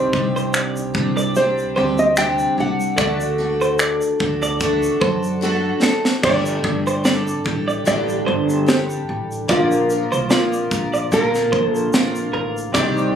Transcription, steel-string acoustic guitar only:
0.00 0.13 C3 medium
0.00 0.13 D#3 medium
0.00 0.13 G3 medium
0.00 0.13 C4 medium
0.00 0.12 D4 medium
0.00 0.12 G4 medium
0.13 0.96 C3 soft
0.13 0.95 D#3 soft
0.13 0.95 G3 medium
0.13 0.95 C4 medium
0.13 0.95 D4 medium
0.13 0.93 G4 medium
0.94 1.35 G3 soft
0.94 1.36 C4 soft
0.94 1.36 D4 medium
0.94 1.35 G4 medium
1.36 1.76 G3 soft
1.36 1.77 C4 medium
1.36 1.76 D4 medium
1.36 1.75 G4 medium
1.76 2.17 G3 soft
1.76 2.17 C4 soft
1.76 2.17 D4 soft
1.76 2.17 G4 medium
2.17 2.58 C3 medium
2.17 2.58 G3 medium
2.17 2.58 C4 medium
2.17 2.58 D4 medium
2.17 2.56 G4 medium
2.57 2.98 G3 soft
2.57 2.98 C4 soft
2.57 2.98 D4 soft
2.57 2.98 G4 soft
2.98 3.39 D3 medium
2.98 3.39 A3 medium
2.98 3.38 D4 medium
2.98 3.38 F#4 medium
2.98 3.37 A4 medium
3.38 5.41 D3 medium
3.38 4.60 A3 medium
3.38 4.22 D4 medium
3.38 4.20 F#4 medium
3.38 4.19 A4 medium
4.20 4.60 D4 soft
4.20 4.61 F#4 medium
4.20 4.61 A4 medium
4.60 5.01 A3 medium
4.60 5.02 D4 medium
4.60 5.01 F#4 medium
4.60 4.99 A4 medium
5.01 5.41 D4 soft
5.01 5.42 F#4 medium
5.01 5.42 A4 medium
5.41 5.82 D3 medium
5.41 5.83 A3 medium
5.41 5.83 D4 medium
5.41 5.83 F#4 medium
5.41 5.82 A4 medium
5.83 6.23 D4 soft
5.83 6.24 F#4 medium
5.83 6.24 A4 medium
6.23 6.64 G2 medium
6.23 6.64 D3 medium
6.23 6.65 G3 medium
6.23 6.64 D4 medium
6.23 6.64 G4 medium
6.23 6.63 A4 medium
6.64 7.03 G3 soft
6.64 7.04 D4 soft
6.64 7.05 G4 soft
6.64 7.05 A4 soft
7.04 7.45 G3 medium
7.04 7.45 D4 medium
7.04 7.45 G4 medium
7.04 7.43 A4 medium
7.44 7.85 G3 soft
7.44 7.85 D4 soft
7.44 7.86 G4 soft
7.44 7.86 A4 medium
7.85 8.67 G2 medium
7.85 9.49 D3 medium
7.85 8.65 G3 medium
7.85 8.67 D4 medium
7.85 8.67 G4 medium
7.85 8.68 A4 medium
8.66 9.48 G3 medium
8.66 9.49 D4 medium
8.66 9.49 G4 medium
8.66 9.50 A4 medium
9.48 9.89 A#2 medium
9.48 9.90 D3 medium
9.48 9.90 F3 medium
9.48 9.90 A#3 medium
9.48 9.90 F4 medium
9.48 9.88 A#4 medium
9.89 10.29 F3 soft
9.89 10.30 A#3 soft
9.89 10.31 F4 soft
9.89 10.30 A#4 soft
10.30 10.71 F3 medium
10.30 10.72 A#3 medium
10.30 10.71 F4 medium
10.30 10.70 A#4 medium
10.71 11.11 F3 soft
10.71 11.12 A#3 soft
10.71 11.12 F4 soft
10.71 11.12 A#4 soft
11.12 11.93 A#2 medium
11.12 12.75 D3 medium
11.12 11.92 F3 medium
11.12 11.93 A#3 medium
11.12 11.94 F4 medium
11.12 11.94 A#4 medium
11.94 12.75 F3 medium
11.94 12.75 A#3 medium
11.94 12.75 F4 medium
11.94 12.76 A#4 medium
12.74 13.15 C3 medium
12.74 13.15 D#3 medium
12.74 13.15 G3 loud
12.74 13.15 C4 medium
12.74 13.15 D4 medium
12.74 13.14 G4 medium

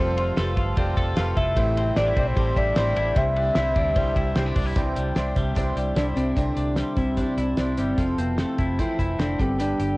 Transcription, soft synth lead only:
0.00 0.35 C5 medium
1.37 1.98 E5 loud
1.97 2.19 D5 loud
2.19 2.28 D5 medium
2.27 2.59 C5 medium
2.57 3.18 D5 loud
3.17 4.36 E5 loud
5.96 6.05 D4 medium
6.16 6.38 C4 medium
6.36 6.97 D4 loud
6.97 7.74 C4 medium
7.78 8.20 C4 medium
8.18 8.39 B3 medium
8.37 8.81 C4 medium
8.79 9.21 E4 loud
9.20 9.41 D4 loud
9.40 9.60 C4 medium
9.61 9.97 D4 loud

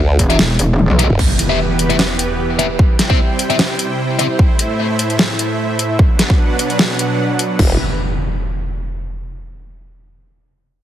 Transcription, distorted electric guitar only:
0.30 0.34 F#4 medium
0.30 0.34 G4 medium
0.30 0.34 E5 loud
0.99 1.04 F#4 medium
0.99 1.04 G4 medium
0.99 1.04 E5 loud
1.50 1.57 G4 medium
1.50 1.57 B4 medium
1.50 1.57 E5 medium
1.90 1.94 G4 medium
1.90 1.94 B4 medium
1.90 1.94 E5 medium
2.59 2.64 G4 medium
2.59 2.64 B4 medium
2.59 2.64 E5 loud
3.10 3.17 G4 medium
3.10 3.17 C5 medium
3.10 3.17 E5 medium
3.50 3.54 G4 medium
3.50 3.54 C5 medium
3.50 3.54 E5 medium
4.19 4.24 G4 medium
4.19 4.24 C5 medium
4.19 4.24 E5 loud

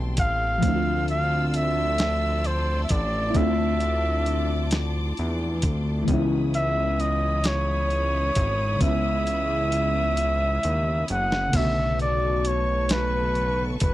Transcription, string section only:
0.00 0.59 A4 medium
0.00 0.58 G5 medium
0.00 0.58 A5 medium
0.00 0.58 C6 medium
0.63 6.04 D5 medium
0.63 6.04 A5 medium
0.63 6.04 C6 medium
0.63 3.33 E6 medium
3.35 6.05 D6 medium
6.08 11.49 E4 medium
6.08 11.50 C#5 medium
6.08 11.50 B5 medium
6.08 11.49 D#6 medium
11.54 13.94 A4 medium
11.54 13.94 B4 medium
11.54 13.94 A5 medium
11.54 13.94 C#6 medium

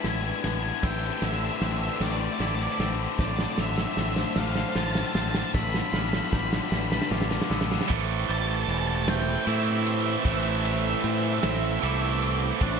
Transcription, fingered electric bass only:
0.04 0.31 A1 medium
0.44 0.71 A1 medium
0.83 1.10 A1 medium
1.22 1.49 A1 medium
1.62 1.88 A1 medium
2.00 2.27 A1 medium
2.40 2.67 A1 medium
2.79 3.06 A1 medium
3.19 3.45 A1 medium
3.58 3.84 A1 medium
3.97 4.24 A1 medium
4.36 4.63 A1 medium
4.76 5.02 A1 medium
5.15 5.41 A1 medium
5.54 5.81 A1 loud
5.93 6.20 A1 medium
6.33 6.59 A1 loud
6.72 6.98 A1 medium
7.11 7.38 A1 medium
7.50 7.77 A1 medium
7.90 8.24 A1 loud
8.29 8.63 A1 medium
8.68 9.36 E1 medium
9.47 10.15 A2 loud
10.25 10.93 A1 loud
11.04 11.38 A2 loud
11.44 11.78 A1 loud
11.83 12.51 C2 medium
12.61 12.80 A1 loud

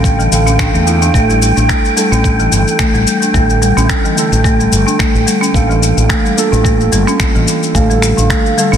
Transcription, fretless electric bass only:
0.00 0.27 A1 medium
0.32 0.68 A1 medium
0.74 1.09 E2 medium
1.14 1.51 A1 medium
1.57 1.66 A1 medium
2.12 2.47 A1 medium
2.52 2.63 G1 medium
2.94 3.04 A1 medium
3.34 3.71 A1 medium
3.77 3.86 A1 medium
4.32 4.67 A1 medium
4.72 4.83 G1 medium
5.15 5.24 A1 medium
5.54 5.91 A1 medium
5.97 6.07 A1 medium
6.52 6.87 A1 medium
6.92 7.04 G1 medium
7.35 7.44 A1 medium
7.75 8.11 A1 medium
8.18 8.27 A1 medium
8.73 8.77 A1 medium

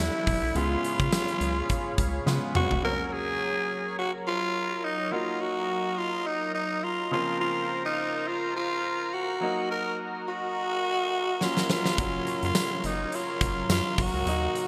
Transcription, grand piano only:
0.00 0.51 D3 medium
0.00 0.52 A3 medium
0.00 0.52 B3 medium
0.00 0.52 E4 medium
0.55 2.23 C#3 medium
0.55 2.24 G#3 medium
0.55 2.24 B3 medium
0.55 0.64 E4 medium
0.64 2.26 F4 medium
2.26 2.84 C#3 medium
2.26 2.84 G#3 medium
2.26 2.84 B3 medium
2.26 2.84 F4 medium
2.83 5.08 F#3 medium
2.83 5.09 A#3 medium
2.83 2.92 C4 medium
2.92 5.13 C#4 medium
5.11 7.08 F#3 medium
5.11 7.09 A#3 medium
5.11 7.09 D#4 medium
7.11 9.37 C#3 medium
7.11 9.37 F3 medium
7.11 9.37 A#3 medium
7.11 9.38 C4 medium
7.11 9.38 F4 medium
9.41 11.37 F#3 medium
9.41 11.38 A#3 medium
9.41 11.38 D#4 medium
11.41 11.96 F#3 medium
11.41 11.97 A#3 medium
11.41 11.99 C#4 medium
11.98 14.23 F#3 medium
11.98 14.23 A#3 medium
11.98 14.24 C#4 medium
14.26 14.68 F#3 medium
14.26 14.68 A#3 medium
14.26 14.68 D#4 medium

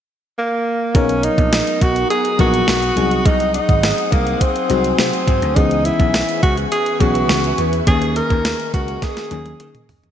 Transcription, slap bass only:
0.95 1.27 B1 loud
1.38 1.60 A#1 medium
1.82 2.03 B1 medium
2.39 2.61 A#1 medium
2.68 2.90 B1 medium
2.97 3.19 C2 loud
3.26 3.58 C2 loud
3.69 3.91 G#1 medium
4.12 4.34 C2 medium
4.70 4.92 C2 medium
4.99 5.10 C3 loud
5.28 5.38 G#2 medium
5.42 5.53 D2 medium
5.56 5.89 C#2 loud
6.00 6.21 B1 medium
6.43 6.65 C#2 medium
7.01 7.22 B1 medium
7.30 7.51 C#2 medium
7.58 7.80 E2 medium
7.87 8.20 D#2 loud
8.30 8.52 D#2 medium
8.74 8.95 C#2 medium
9.31 9.53 D#2 medium
9.60 9.71 D#3 loud
9.89 10.00 D#2 medium
10.03 10.11 E2 medium

